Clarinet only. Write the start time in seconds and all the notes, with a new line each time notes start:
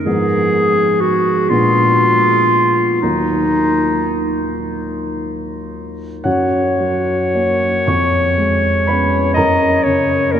0.05 G#4
1.01 F#4
1.49 F4
3.02 D#4
6.25 C#5
9.34 D#5
9.83 C#5
10.32 A#4